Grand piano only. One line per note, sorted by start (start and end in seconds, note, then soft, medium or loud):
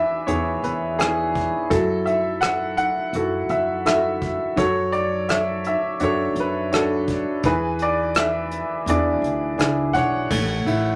0.00 1.67 E3 medium
0.00 0.25 G#4 medium
0.00 0.64 B4 medium
0.00 1.73 D5 medium
0.00 1.73 E5 medium
0.27 0.98 B3 soft
0.27 0.97 E4 soft
0.27 0.97 G#4 soft
0.27 0.64 C#5 medium
0.64 1.01 B4 medium
0.99 1.70 B3 soft
0.99 1.70 E4 soft
0.99 1.49 G#4 medium
1.70 4.53 F#3 medium
1.70 3.11 E4 medium
1.70 2.04 A4 medium
2.06 2.40 E5 medium
2.41 2.76 F#5 medium
2.77 3.52 F#5 medium
3.15 3.84 E4 soft
3.15 3.84 F#4 soft
3.15 3.84 A4 soft
3.50 3.85 E5 medium
3.85 4.55 E4 soft
3.85 4.55 F#4 soft
3.85 4.55 A4 medium
3.85 4.36 E5 medium
4.56 7.39 F#3 medium
4.56 5.97 A4 medium
4.56 4.95 C#5 medium
4.92 5.30 D5 medium
5.29 5.62 E5 medium
5.67 6.03 E5 medium
6.00 6.70 D4 soft
6.00 6.70 F#4 soft
6.00 6.74 A4 medium
6.00 6.02 C#5 medium
6.00 6.39 C#5 medium
6.40 6.75 B4 medium
6.72 7.42 D4 soft
6.72 7.41 F#4 soft
6.72 7.24 A4 medium
6.72 7.42 C#5 medium
7.45 10.26 E3 medium
7.45 8.84 G#4 medium
7.45 7.82 B4 medium
7.82 8.18 D5 medium
8.18 8.90 E5 medium
8.88 9.56 D4 soft
8.88 9.57 E4 soft
8.88 9.57 G#4 medium
8.88 9.91 D5 medium
9.58 10.27 D4 soft
9.58 10.28 E4 soft
9.58 10.28 G#4 medium
9.93 10.96 C#5 medium
9.93 10.96 F#5 medium
10.31 10.96 A3 medium
10.66 10.96 E4 medium